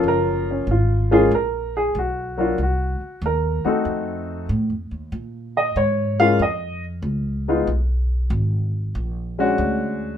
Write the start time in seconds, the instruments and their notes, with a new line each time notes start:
Already playing: grand piano F3 A#3 C#4 F4
0.04 upright bass F#1
0.08 grand piano A#4
0.51 grand piano C#4
0.67 upright bass G#1
0.71 grand piano F4
1.11 grand piano G#3 A#3 C#4 F4 G#4
1.31 upright bass A#1, grand piano A#4
1.77 grand piano G#4
1.95 upright bass B1, grand piano F#4
2.37 grand piano F#3 A#3 D4 F4 F#4
2.58 upright bass C2
2.63 grand piano F#4
3.01 muted upright bass stroke
3.22 upright bass D#2
3.26 grand piano A#4
3.65 grand piano A3 C4 D#4 F#4 A4, muted upright bass stroke
3.85 upright bass F2
4.49 upright bass A2
4.70 upright bass F2
4.91 upright bass D#2
5.12 upright bass A#2
5.57 grand piano D#5
5.76 upright bass G#2, grand piano C#5
6.20 grand piano G#3 A#3 C#4 F4 F5
6.39 upright bass F2, grand piano D#5
7.02 upright bass C#2
7.48 grand piano G#3 B3 D#4 F4
7.67 upright bass B1
8.30 upright bass G#1
8.95 upright bass A#1
9.38 grand piano G#3 C#4 D4 F#4
9.58 upright bass D2